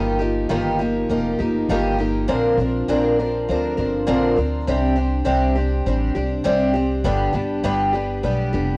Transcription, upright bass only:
0.00 0.46 G1 medium
0.50 1.06 G1 medium
1.10 1.37 F1 medium
1.40 1.67 G1 medium
1.69 2.25 G1 medium
2.29 2.56 A#1 medium
2.57 2.85 A#1 medium
2.88 3.44 A#1 medium
3.49 3.76 D2 medium
3.78 4.05 G1 medium
4.08 4.36 A#1 medium
4.37 4.65 D2 medium
4.68 5.23 C2 medium
5.27 5.82 C2 medium
5.86 6.14 A1 medium
6.16 6.43 C2 medium
6.46 7.06 C2 medium
7.04 7.32 G1 medium
7.34 7.62 G1 medium
7.64 8.19 G1 medium
8.23 8.51 B1 medium
8.54 8.77 F1 medium

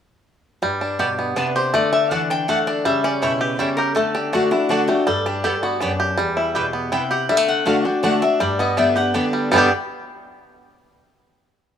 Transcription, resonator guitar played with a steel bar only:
1.36 1.55 B4 medium
1.56 1.73 C5 medium
1.75 1.92 D5 medium
1.93 2.11 E5 medium
2.11 2.29 F#5 medium
2.31 2.48 G5 loud
2.48 2.67 F#5 medium
2.67 2.85 D5 medium
2.86 3.04 E5 medium
3.04 3.22 D5 medium
3.23 3.42 C#5 medium
3.42 3.59 B4 medium
3.59 3.77 C#5 loud
3.77 3.94 A#4 medium
3.95 4.14 A4 medium
4.15 4.32 G4 medium
4.33 4.51 F#4 medium
4.51 4.69 E4 medium
4.69 4.87 F#4 medium
4.88 5.06 G4 medium
5.07 5.25 A4 medium
5.26 5.44 G4 medium
5.44 5.62 A4 medium
5.63 5.81 F#4 medium
5.81 5.93 G4 medium
6.92 7.11 G5 medium
7.11 7.29 F#5 medium
7.29 7.48 E5 medium
7.48 7.66 F#5 loud
7.67 7.85 F5 medium
7.85 8.03 G5 loud
8.04 8.22 F#5 medium
8.22 8.40 E5 loud
8.40 8.59 D5 medium
8.60 8.77 D#5 medium
8.78 8.96 E5 medium
8.97 9.15 F#5 medium
9.15 9.27 G5 medium
9.53 9.70 G5 medium

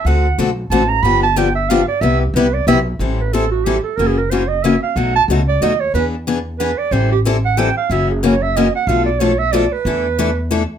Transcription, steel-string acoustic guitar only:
0.06 0.26 D3 medium
0.06 0.26 A3 medium
0.06 0.26 C4 medium
0.06 0.26 F#4 medium
0.06 0.26 A4 medium
0.39 0.49 D3 medium
0.39 0.49 A3 medium
0.39 0.49 C4 medium
0.39 0.49 F#4 loud
0.39 0.50 A4 loud
0.72 0.82 D3 medium
0.72 0.82 A3 medium
0.72 0.82 C4 loud
0.72 0.82 F#4 loud
0.72 0.82 A4 medium
1.04 1.24 D3 medium
1.04 1.24 F3 medium
1.04 1.24 B3 medium
1.04 1.24 D4 medium
1.04 1.24 G4 medium
1.36 1.47 D3 medium
1.36 1.47 F3 medium
1.36 1.47 B3 loud
1.36 1.47 D4 loud
1.36 1.48 G4 loud
1.70 1.80 D3 medium
1.70 1.80 F3 loud
1.70 1.80 B3 loud
1.70 1.81 D4 loud
1.70 1.81 G4 loud
2.02 2.22 C3 medium
2.02 2.22 G3 medium
2.02 2.22 B3 medium
2.02 2.22 E4 medium
2.02 2.22 G4 medium
2.36 2.46 C3 medium
2.36 2.46 G3 medium
2.36 2.46 B3 medium
2.36 2.46 E4 loud
2.36 2.46 G4 loud
2.68 2.78 C3 medium
2.68 2.78 G3 loud
2.68 2.78 B3 medium
2.68 2.78 E4 loud
2.68 2.78 G4 loud
3.00 3.20 E3 medium
3.00 3.20 G3 medium
3.00 3.20 C4 medium
3.00 3.20 E4 medium
3.00 3.20 A4 medium
3.33 3.44 E3 medium
3.33 3.43 G3 medium
3.33 3.44 C4 medium
3.33 3.44 E4 medium
3.33 3.44 A4 medium
3.66 3.76 E3 medium
3.66 3.76 G3 medium
3.66 3.76 C4 medium
3.66 3.77 E4 medium
3.66 3.77 A4 medium
3.99 4.18 C#3 medium
3.99 4.18 E3 medium
3.99 4.19 A#3 medium
3.99 4.19 C#4 medium
3.99 4.19 F#4 medium
4.31 4.42 C#3 medium
4.31 4.42 E3 medium
4.31 4.42 A#3 medium
4.31 4.42 C#4 medium
4.31 4.42 F#4 medium
4.64 4.74 C#3 medium
4.64 4.74 E3 medium
4.64 4.74 A#3 medium
4.64 4.75 C#4 medium
4.64 4.75 F#4 medium
4.96 5.16 B2 medium
4.96 5.16 F#3 medium
4.96 5.16 A3 medium
4.96 5.16 D#4 medium
4.96 5.17 F#4 medium
5.30 5.40 B2 medium
5.30 5.40 F#3 medium
5.30 5.40 A3 medium
5.30 5.40 D#4 medium
5.30 5.41 F#4 loud
5.62 5.72 B2 medium
5.62 5.72 F#3 medium
5.62 5.72 A3 loud
5.62 5.72 D#4 medium
5.62 5.73 F#4 medium
5.95 6.14 E3 medium
5.95 6.14 B3 medium
5.95 6.15 D4 medium
5.95 6.15 G#4 medium
6.27 6.37 E3 medium
6.27 6.38 B3 medium
6.27 6.38 D4 medium
6.27 6.38 G#4 loud
6.60 6.70 E3 medium
6.60 6.70 B3 medium
6.60 6.70 D4 medium
6.60 6.71 G#4 medium
6.92 7.12 E3 medium
6.92 7.12 G3 medium
6.92 7.12 C4 medium
6.92 7.12 E4 medium
6.92 7.12 A4 medium
7.25 7.36 E3 medium
7.25 7.36 G3 medium
7.25 7.36 C4 loud
7.25 7.36 E4 loud
7.25 7.36 A4 medium
7.57 7.68 E3 loud
7.57 7.68 G3 medium
7.57 7.68 C4 medium
7.57 7.68 E4 loud
7.57 7.69 A4 medium
7.91 8.10 C#3 medium
7.91 8.10 E3 medium
7.91 8.10 A#3 medium
7.91 8.11 C#4 medium
7.91 8.11 F#4 medium
8.23 8.33 C#3 medium
8.23 8.34 E3 medium
8.23 8.34 A#3 medium
8.23 8.34 C#4 loud
8.23 8.34 F#4 medium
8.56 8.66 C#3 medium
8.56 8.67 E3 medium
8.56 8.67 A#3 loud
8.56 8.67 C#4 medium
8.56 8.67 F#4 medium
8.89 9.08 B2 medium
8.89 9.08 F3 medium
8.89 9.08 A3 medium
8.89 9.08 D4 medium
8.89 9.09 A4 medium
9.20 9.31 B2 medium
9.20 9.31 F3 medium
9.20 9.31 A3 medium
9.20 9.31 D4 medium
9.20 9.32 A4 medium
9.53 9.64 B2 loud
9.53 9.64 F3 loud
9.53 9.64 A3 loud
9.53 9.64 D4 loud
9.53 9.64 A4 loud
9.86 10.06 E3 medium
9.86 10.06 A3 medium
9.86 10.06 D4 medium
9.86 10.06 E4 medium
9.86 10.06 A4 medium
10.19 10.29 E3 medium
10.19 10.29 A3 medium
10.19 10.29 D4 medium
10.19 10.30 E4 medium
10.19 10.30 A4 loud
10.51 10.61 E3 medium
10.51 10.62 A3 medium
10.51 10.62 D4 medium
10.51 10.62 E4 medium
10.51 10.62 A4 loud

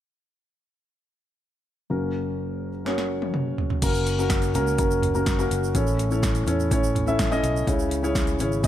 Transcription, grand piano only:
1.90 3.79 F#1 soft
1.90 3.79 F#2 soft
1.90 2.69 A#3 medium
1.90 2.69 C#4 soft
1.90 2.69 F#4 soft
1.90 2.69 A#4 medium
2.85 3.64 A#3 medium
2.85 3.65 C#4 medium
2.85 3.65 F#4 medium
2.85 3.65 C#5 medium
3.83 4.12 A#3 medium
3.83 4.12 C#4 medium
3.83 4.12 F#4 medium
3.83 4.13 A#4 medium
4.19 4.48 A#3 medium
4.19 4.48 C#4 medium
4.19 4.48 F#4 medium
4.19 4.49 A#4 medium
4.54 4.74 A#3 medium
4.54 4.74 C#4 medium
4.54 4.75 F#4 medium
4.54 4.75 A#4 medium
4.78 5.08 A#3 medium
4.78 5.08 C#4 medium
4.78 5.08 F#4 medium
4.78 5.09 A#4 medium
5.14 5.34 A#3 medium
5.14 5.35 C#4 medium
5.14 5.35 F#4 medium
5.14 5.35 A#4 medium
5.38 5.68 A#3 medium
5.38 5.68 C#4 medium
5.38 5.68 F#4 medium
5.38 5.69 A#4 medium
5.75 6.43 A2 medium
5.75 6.05 C#4 medium
5.75 6.05 E4 medium
5.75 6.05 A4 medium
5.75 6.05 C#5 medium
6.11 6.40 C#4 medium
6.11 6.41 E4 medium
6.11 6.41 A4 medium
6.11 6.41 C#5 medium
6.47 6.67 C#4 medium
6.47 6.67 E4 medium
6.47 6.67 A4 medium
6.47 6.67 C#5 medium
6.72 7.01 C#4 medium
6.72 7.01 E4 medium
6.72 7.01 A4 medium
6.72 7.01 C#5 medium
7.06 7.26 C#4 medium
7.06 7.27 E4 medium
7.06 7.27 A4 medium
7.06 7.27 E5 medium
7.31 7.61 C#4 medium
7.31 7.61 E4 medium
7.31 7.61 A4 medium
7.31 7.61 D#5 medium
7.67 8.35 C#3 medium
7.67 7.97 C#4 medium
7.67 7.97 E4 medium
7.67 7.97 G#4 medium
7.67 7.97 C#5 medium
8.03 8.33 C#4 medium
8.03 8.33 E4 medium
8.03 8.33 G#4 medium
8.03 8.33 C#5 medium
8.40 8.59 C#4 medium
8.40 8.60 E4 medium
8.40 8.60 G#4 medium
8.40 8.60 C#5 medium
8.63 8.67 C#4 medium
8.63 8.67 E4 medium
8.63 8.67 G#4 medium

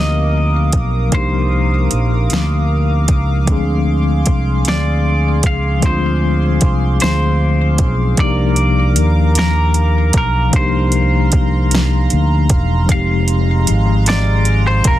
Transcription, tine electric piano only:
0.00 1.07 F3 medium
0.00 1.07 A#3 medium
0.00 1.08 C4 medium
0.00 1.09 D#4 medium
0.00 1.10 G4 medium
1.09 3.42 F3 medium
1.09 3.43 A#3 medium
1.09 3.44 D4 medium
1.15 3.45 D#4 medium
1.15 3.46 G4 medium
3.44 3.52 E3 medium
3.44 5.78 G#3 medium
3.44 5.79 C4 medium
3.50 5.78 F3 medium
3.50 5.80 D4 medium
3.50 5.81 G#4 medium
5.79 8.12 F3 medium
5.79 8.13 G#3 medium
5.79 8.14 C4 medium
5.85 8.15 D4 medium
5.85 8.16 F4 medium
8.15 10.48 F3 medium
8.15 10.49 A#3 medium
8.15 10.50 D4 medium
8.21 10.51 D#4 medium
8.21 10.52 G4 medium
10.50 12.83 F3 medium
10.50 12.84 A#3 medium
10.50 12.85 D4 medium
10.56 12.86 D#4 medium
10.56 12.87 G4 medium
12.86 14.99 F3 medium
12.86 14.99 G#3 medium
12.86 14.99 C4 medium
12.94 14.99 G4 medium

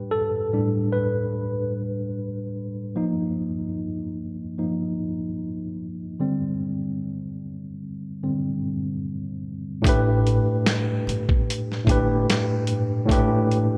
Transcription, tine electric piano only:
0.00 0.52 A2 soft
0.00 0.52 G3 soft
0.00 0.53 D4 medium
0.00 0.16 B4 loud
0.11 0.95 A4 medium
0.53 2.92 A2 medium
0.53 2.92 G3 soft
0.53 2.92 D4 medium
0.93 2.91 B4 medium
2.96 3.51 F3 medium
2.96 3.51 A#3 soft
2.96 3.52 D#4 medium
4.58 4.94 F3 soft
4.58 4.95 A#3 soft
4.58 4.95 D#4 soft
6.20 8.22 D3 medium
6.20 8.22 G3 medium
6.20 8.23 C4 medium
8.23 8.59 D3 soft
8.23 8.59 G3 soft
8.23 8.60 C4 soft
9.82 10.93 A2 medium
9.82 10.94 A3 medium
9.82 10.95 D4 medium
9.87 10.96 G4 medium
9.87 10.97 B4 loud
11.84 12.67 A2 medium
11.84 12.68 A3 medium
11.84 12.69 D4 medium
11.89 12.70 G4 medium
11.89 12.70 B4 loud
13.06 13.78 A2 loud
13.06 13.78 A3 medium
13.06 13.78 D4 medium
13.11 13.78 G4 medium
13.11 13.78 B4 medium

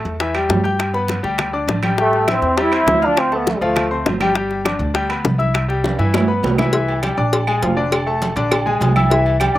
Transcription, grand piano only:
0.00 0.15 A3 medium
0.00 0.15 A4 medium
0.00 0.15 A5 medium
0.20 0.32 E3 medium
0.20 0.32 E4 medium
0.20 0.33 E5 medium
0.35 0.59 G3 medium
0.35 0.59 G4 medium
0.35 0.59 G5 medium
0.64 0.88 G4 medium
0.64 0.89 G5 medium
0.64 0.89 G6 medium
0.94 1.18 B3 medium
0.94 1.18 B4 medium
0.94 1.19 B5 medium
1.23 1.48 G3 medium
1.23 1.48 G4 medium
1.23 1.48 G5 medium
1.53 1.78 D4 medium
1.53 1.78 D5 medium
1.53 1.78 D6 medium
1.83 1.95 G3 medium
1.83 1.95 G4 medium
1.83 1.96 G5 medium
1.97 2.22 G3 medium
1.97 2.22 G4 medium
1.97 2.23 G5 medium
2.27 2.52 E4 medium
2.27 2.52 E5 medium
2.27 2.52 E6 medium
2.57 2.69 G3 medium
2.57 2.70 G4 medium
2.57 2.70 G5 medium
2.71 2.96 C4 medium
2.71 2.96 C5 medium
2.71 2.97 C6 medium
3.02 3.26 F4 medium
3.02 3.26 F5 medium
3.02 3.27 F6 medium
3.32 3.56 A3 medium
3.32 3.56 A4 medium
3.32 3.56 A5 medium
3.61 3.86 F3 loud
3.61 3.86 F4 medium
3.61 3.86 F5 medium
3.91 4.15 C4 medium
3.91 4.15 C5 medium
3.91 4.16 C6 medium
4.20 4.33 G3 medium
4.20 4.33 G4 medium
4.20 4.33 G5 loud
4.35 4.59 G3 medium
4.35 4.60 G4 medium
4.35 4.60 G5 medium
4.64 4.89 D4 medium
4.64 4.90 D5 medium
4.64 4.90 D6 medium
4.94 5.07 G3 medium
4.94 5.07 G4 medium
4.94 5.07 G5 medium
5.09 5.34 B3 medium
5.09 5.34 B4 medium
5.09 5.34 B5 medium
5.38 5.63 E4 medium
5.38 5.64 E5 medium
5.38 5.64 E6 medium
5.68 5.93 G3 medium
5.68 5.93 G4 medium
5.68 5.94 G5 medium
5.98 6.23 E3 medium
5.98 6.23 E4 medium
5.98 6.24 E5 medium
6.28 6.52 B3 medium
6.28 6.53 B4 medium
6.28 6.53 B5 medium
6.58 6.71 E3 medium
6.58 6.71 E4 medium
6.58 6.71 E5 medium
6.73 6.98 E3 medium
6.73 6.98 E4 medium
6.73 6.98 E5 medium
7.03 7.15 G3 medium
7.03 7.15 G4 medium
7.03 7.15 G5 medium
7.17 7.42 D4 medium
7.17 7.42 D5 medium
7.17 7.42 D6 medium
7.47 7.59 G#3 medium
7.47 7.60 G#4 medium
7.47 7.60 G#5 medium
7.62 7.74 F3 medium
7.62 7.74 F4 medium
7.62 7.74 F5 medium
7.76 8.01 D3 medium
7.76 8.01 D4 medium
7.76 8.01 D5 medium
8.06 8.31 A3 medium
8.06 8.31 A4 medium
8.06 8.31 A5 medium
8.36 8.60 D3 medium
8.36 8.61 D4 loud
8.36 8.61 D5 medium
8.66 8.90 G#3 medium
8.66 8.90 G#4 medium
8.66 8.91 G#5 medium
8.96 9.08 E4 medium
8.96 9.08 E5 medium
8.96 9.08 E6 medium
9.10 9.35 E3 medium
9.10 9.35 E4 medium
9.10 9.35 E5 medium
9.40 9.52 G3 medium
9.40 9.53 G4 medium
9.40 9.53 G5 medium
9.55 9.59 D4 medium
9.55 9.59 D5 medium

